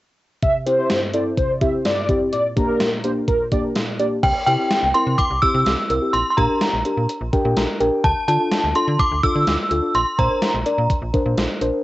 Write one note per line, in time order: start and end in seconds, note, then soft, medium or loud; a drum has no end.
0.42 0.78 C3 medium
0.42 0.57 E5 medium
0.42 kick loud
0.42 closed hi-hat medium
0.66 0.75 C4 medium
0.66 0.75 E4 medium
0.66 0.75 G4 medium
0.66 1.00 C5 medium
0.66 closed hi-hat medium
0.78 0.96 C4 medium
0.78 0.96 E4 medium
0.78 0.96 G4 medium
0.90 1.25 G2 medium
0.90 snare loud
0.90 closed hi-hat medium
1.14 1.32 C4 medium
1.14 1.32 E4 medium
1.14 1.32 A4 medium
1.14 1.21 D5 medium
1.14 closed hi-hat medium
1.38 1.73 C3 medium
1.38 1.52 C5 medium
1.38 kick medium
1.38 closed hi-hat medium
1.61 1.79 C4 medium
1.61 1.79 E4 medium
1.61 1.79 G4 medium
1.61 1.69 E5 medium
1.61 kick medium
1.61 closed hi-hat medium
1.85 2.21 G2 medium
1.85 2.19 D5 medium
1.85 snare loud
1.85 closed hi-hat medium
2.09 2.27 C4 medium
2.09 2.27 E4 medium
2.09 2.27 G4 medium
2.09 kick medium
2.09 closed hi-hat medium
2.33 2.68 A#2 medium
2.33 2.47 D5 loud
2.33 closed hi-hat medium
2.57 2.65 A#3 medium
2.57 2.65 D4 medium
2.57 2.66 G4 medium
2.57 2.90 A#4 medium
2.57 kick medium
2.57 closed hi-hat medium
2.69 2.86 A#3 medium
2.69 2.86 D4 medium
2.69 2.86 G4 medium
2.80 3.16 A#2 medium
2.80 snare loud
2.80 closed hi-hat medium
3.04 3.22 A#3 medium
3.04 3.22 D4 medium
3.04 3.22 G4 medium
3.04 3.12 C5 medium
3.04 closed hi-hat medium
3.28 3.64 A#2 medium
3.28 3.43 A#4 medium
3.28 kick medium
3.28 closed hi-hat medium
3.52 3.70 A#3 medium
3.52 3.70 D4 medium
3.52 3.70 G4 medium
3.52 3.59 D5 medium
3.52 kick medium
3.52 closed hi-hat medium
3.76 4.11 A#2 medium
3.76 snare loud
3.76 closed hi-hat medium
4.00 4.17 A#3 medium
4.00 4.17 D4 medium
4.00 4.17 G4 medium
4.00 4.07 D5 medium
4.00 closed hi-hat medium
4.23 4.33 C2 loud
4.23 4.46 G5 medium
4.23 kick loud
4.23 closed hi-hat medium
4.23 crash medium
4.47 4.57 C3 loud
4.47 4.56 C4 medium
4.47 4.56 E4 medium
4.47 4.56 G4 medium
4.47 4.96 G5 medium
4.47 closed hi-hat medium
4.59 4.77 C4 medium
4.59 4.77 E4 medium
4.59 4.77 G4 medium
4.71 snare loud
4.71 closed hi-hat medium
4.83 4.93 C2 medium
4.94 5.13 C4 medium
4.94 5.13 E4 medium
4.94 5.13 A#4 medium
4.94 5.19 C6 medium
4.94 closed hi-hat medium
5.07 5.16 C3 medium
5.18 5.40 D6 loud
5.18 kick medium
5.18 closed hi-hat medium
5.30 5.40 C2 medium
5.42 5.51 C4 medium
5.42 5.51 E4 medium
5.42 5.51 G4 medium
5.42 6.16 E6 loud
5.42 kick medium
5.42 closed hi-hat medium
5.54 5.64 C3 loud
5.54 5.72 C4 medium
5.54 5.72 E4 medium
5.54 5.72 G4 medium
5.66 5.76 C2 medium
5.66 snare loud
5.66 closed hi-hat medium
5.90 6.00 C2 loud
5.90 5.99 C4 medium
5.90 5.99 E4 medium
5.90 5.99 A#4 medium
5.90 closed hi-hat medium
6.02 6.14 C4 medium
6.02 6.14 E4 medium
6.02 6.14 G4 medium
6.13 6.24 A#1 loud
6.13 6.29 C6 medium
6.13 closed hi-hat medium
6.31 6.38 C6 medium
6.37 6.47 A#2 loud
6.37 6.46 D4 medium
6.37 6.46 G4 medium
6.37 6.46 A#4 medium
6.37 7.05 A#5 medium
6.37 kick medium
6.37 closed hi-hat medium
6.49 6.67 D4 medium
6.49 6.67 G4 medium
6.49 6.67 A#4 medium
6.61 snare loud
6.61 closed hi-hat medium
6.73 6.83 A#1 medium
6.85 7.03 D4 medium
6.85 7.03 G4 medium
6.85 7.03 A#4 medium
6.85 closed hi-hat medium
6.97 7.07 A#2 medium
7.09 closed hi-hat medium
7.21 7.31 A#1 medium
7.33 7.42 D4 medium
7.33 7.42 G4 medium
7.33 7.42 A#4 medium
7.33 7.55 G5 medium
7.33 kick medium
7.33 closed hi-hat medium
7.45 7.54 A#2 loud
7.45 7.63 D4 medium
7.45 7.62 G4 medium
7.45 7.62 A#4 medium
7.56 7.66 A#1 loud
7.56 7.79 A#5 medium
7.56 snare loud
7.56 closed hi-hat medium
7.80 7.90 A#1 medium
7.80 7.89 D4 medium
7.80 7.89 G4 medium
7.80 7.89 A#4 medium
7.80 8.02 G5 medium
7.80 closed hi-hat medium
7.92 8.04 D4 medium
7.92 8.04 G4 medium
7.92 8.04 A#4 medium
8.04 8.14 D2 loud
8.04 8.27 A5 medium
8.04 kick loud
8.04 closed hi-hat medium
8.28 8.38 D3 medium
8.28 8.37 D4 medium
8.28 8.37 F4 medium
8.28 8.37 A4 medium
8.28 8.72 A5 medium
8.28 closed hi-hat medium
8.40 8.58 D4 medium
8.40 8.58 F4 medium
8.40 8.58 A4 medium
8.52 snare loud
8.52 closed hi-hat medium
8.64 8.73 D2 medium
8.75 8.93 D4 medium
8.75 8.93 F4 medium
8.75 8.93 A4 medium
8.75 9.00 C6 medium
8.75 closed hi-hat medium
8.88 8.97 D3 loud
8.99 9.24 D6 loud
8.99 kick medium
8.99 closed hi-hat medium
9.11 9.21 D2 medium
9.23 9.32 D4 medium
9.23 9.32 F4 medium
9.23 9.32 A4 medium
9.23 9.97 E6 loud
9.23 kick medium
9.23 closed hi-hat medium
9.35 9.45 D3 medium
9.35 9.53 D4 medium
9.35 9.53 F4 medium
9.35 9.53 A4 medium
9.47 9.57 D2 loud
9.47 snare loud
9.47 closed hi-hat medium
9.71 9.81 D2 loud
9.71 9.80 D4 medium
9.71 9.80 F4 medium
9.71 9.80 A4 medium
9.71 closed hi-hat medium
9.83 9.95 D4 medium
9.83 9.95 F4 medium
9.83 9.95 A4 medium
9.95 10.04 A#1 loud
9.95 10.19 C6 loud
9.95 closed hi-hat medium
10.18 10.28 A#2 medium
10.18 10.27 D4 medium
10.18 10.27 A#4 medium
10.18 10.27 C5 medium
10.18 10.86 A#5 medium
10.18 kick medium
10.18 closed hi-hat medium
10.30 10.48 D4 medium
10.30 10.48 A#4 medium
10.30 10.48 C5 medium
10.42 snare loud
10.42 closed hi-hat medium
10.54 10.64 A#1 loud
10.66 10.84 D4 medium
10.66 10.84 A#4 medium
10.66 10.84 D5 medium
10.66 closed hi-hat medium
10.78 10.88 A#2 loud
10.90 kick medium
10.90 closed hi-hat medium
11.02 11.12 A#1 loud
11.14 11.23 D4 medium
11.14 11.23 A#4 medium
11.14 11.23 C5 medium
11.14 kick medium
11.14 closed hi-hat medium
11.26 11.35 A#2 medium
11.26 11.43 D4 medium
11.26 11.43 A#4 medium
11.26 11.43 C5 medium
11.38 11.47 A#1 loud
11.38 snare loud
11.38 closed hi-hat medium
11.61 11.71 A#1 medium
11.61 11.70 D4 medium
11.61 11.70 A#4 medium
11.61 11.70 C5 loud
11.61 closed hi-hat medium
11.73 11.84 A#4 medium
11.73 11.84 C5 medium